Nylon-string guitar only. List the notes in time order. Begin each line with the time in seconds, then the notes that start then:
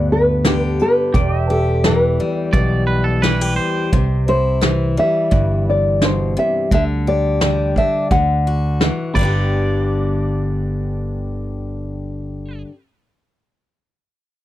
Already playing: D5
0.12 B4
0.65 A4
0.82 B4
1.51 A4
1.85 B4
3.93 C5
4.29 C5
4.99 E5
5.70 D5
6.04 C5
6.39 E5
6.74 E5
7.08 D5
7.78 E5
8.12 F#5
9.14 B5